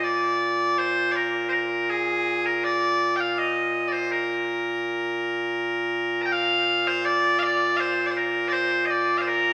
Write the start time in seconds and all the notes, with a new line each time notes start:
Already playing: A#2
0.03 D5
0.79 C5
1.12 D5
1.16 A#4
1.49 A#4 C5
1.90 G#4
2.46 A#4
2.64 D5
3.16 G5
3.20 F5
3.38 D#5
3.88 D5
3.93 C5
4.11 A#4
6.22 G5 A#5
6.32 F5
6.87 C5
7.05 D5
7.39 D5 F5
7.77 C5 F5
8.07 D5
8.11 C5
8.17 A#4
8.48 D5
8.53 C5
8.86 D#5
8.90 D5
9.18 C5 F5
9.28 A#4